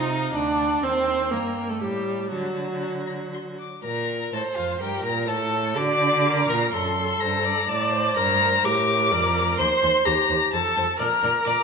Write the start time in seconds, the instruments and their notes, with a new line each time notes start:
Already playing: cello C3, viola D#4, violin D#5
0.11 violin F5
0.34 cello D2, viola D4, violin D5 F#5
0.83 cello D#2, viola C4, violin C5 G5
1.31 cello G2, viola A#3, violin A#4 G5
1.68 viola A3, violin A4
1.81 cello A2, viola G3, violin G4 A5
2.31 cello D3, viola F#3, violin F#4 A5
2.82 violin A5
3.07 violin A#5
3.33 violin C6
3.59 violin D6
3.84 cello A#2, violin A#4 A#5
4.33 cello A2, violin A4 A5, viola C5
4.56 cello F2, violin F4 F5
4.80 cello G2, violin G4 G5, viola A#4
5.04 cello A#2, violin A#4 A#5
5.28 cello A2, viola A4, violin A4 A5
5.76 cello D3, viola F#4, violin D5 D6
6.25 viola A#4
6.49 cello A#2, violin A#4 A#5
6.73 cello F#2, violin A4 C6, viola A4
7.20 cello G2, violin C5 A#5
7.45 violin D5
7.67 cello A2, viola D5, violin D5 A5
7.93 violin C5
8.16 cello G2, viola A#4, violin A#5
8.64 cello A2, viola G4, violin A#4 D6
9.11 cello F2, viola A#4, violin D5
9.58 cello D#2, violin C5 C6, viola C5
9.82 cello D#2, violin C5
10.05 cello D#2, viola G4, violin C5 A#5
10.29 cello D#2, violin C5
10.53 cello F2, viola A4, violin C5 A5
10.77 cello F2, violin C5
10.99 cello A#2, viola A#4, violin D5 F6
11.23 cello A#2, violin D5
11.46 cello A#2, violin D5 D6